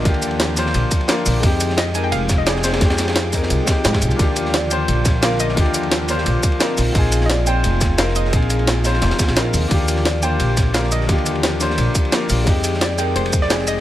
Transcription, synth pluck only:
X:1
M:4/4
L:1/16
Q:1/4=174
K:Eb
V:1 name="Synth pluck"
e6 z8 z2 | z4 e2 a g f3 e d2 c2- | c12 z4 | z4 d2 g6 f2 e2- |
e6 z8 z2 | z3 z/2 e/2 d2 g6 f2 e2- | e6 z8 z2 | z4 d2 g6 f2 e2- |
e6 z8 z2 | z4 d2 g2 c3 d3 e2 |]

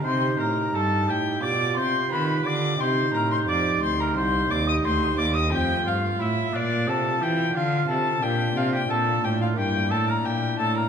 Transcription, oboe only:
X:1
M:4/4
L:1/16
Q:1/4=88
K:Cdor
V:1 name="Oboe"
c2 B2 A2 G2 d2 c2 =B2 d2 | c2 B c d2 c B c2 d e c2 d e | [K:F] G2 F2 E2 D2 A2 G2 F2 A2 | G2 F G A2 G F G2 A B G2 A B |]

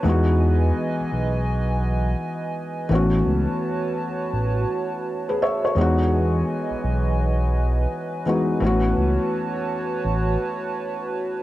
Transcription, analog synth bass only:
X:1
M:4/4
L:1/16
Q:"Swing 16ths" 1/4=84
K:E
V:1 name="Analog synth bass" clef=bass
E,,4 z B,,, B,,,6 z4 | A,,,2 C,, z4 z A,,,2 z6 | E,,4 z B,,, B,,,6 z4 | A,,,2 C,, z4 z A,,,2 z6 |]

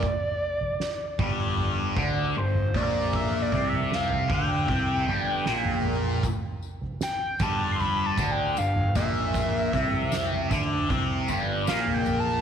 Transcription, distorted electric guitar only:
X:1
M:4/4
L:1/8
Q:1/4=77
K:C
V:1 name="Distorted electric guitar" clef=bass
z3 [G,,G,]2 [D,D] G,, [_B,,_B,]- | [_B,,_B,] [C,C]2 [D,D] [C,C] [G,,G,] [B,,B,]2 | z3 [G,,G,]2 [D,D] G,, [_B,,_B,]- | [_B,,_B,] [C,C]2 [D,D] [C,C] [G,,G,] [B,,B,]2 |]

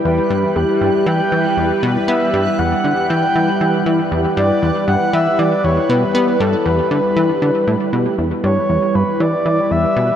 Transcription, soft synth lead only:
X:1
M:4/4
L:1/8
Q:1/4=118
K:Em
V:1 name="Soft synth lead"
B2 G2 g3 z | e2 f2 g3 z | z d2 f e d ^c B- | B A B4- B z |
z ^c2 B d2 e2 |]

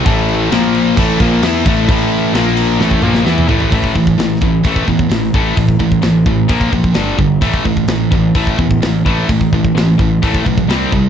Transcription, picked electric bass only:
X:1
M:4/4
L:1/8
Q:1/4=130
K:Am
V:1 name="Picked electric bass" clef=bass
A,,,2 _B,,,2 A,,, B,,, E,, A,,, | A,,,2 _B,,,2 A,,, B,,, E,, A,,, | A,,, A,,, A,,, A,,, A,,, E,, A,,, A,,, | A,,, A,,, A,,, A,,, _B,,, B,,, G,,, G,,, |
A,,, A,,, A,,, A,,, A,,, E,, A,,, A,,, | A,,, A,,, A,,, A,,, A,,, B,,, C,, C,, |]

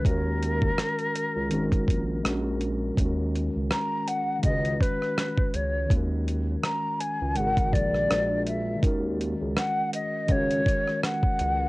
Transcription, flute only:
X:1
M:4/4
L:1/8
Q:"Swing 16ths" 1/4=82
K:Dbmix
V:1 name="Flute"
B6 z2 | z2 b g e c2 d | z2 b a g =d2 _f | z2 g e d2 g2 |]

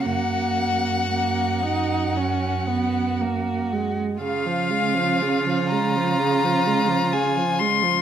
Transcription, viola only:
X:1
M:4/4
L:1/16
Q:1/4=58
K:F#
V:1 name="Viola" clef=bass
A,4 A,2 D2 C2 B,2 A,2 G,2 | [K:Db] D, F, A, F, D, F, A, F, D, F, A, F, D, F, A, F, |]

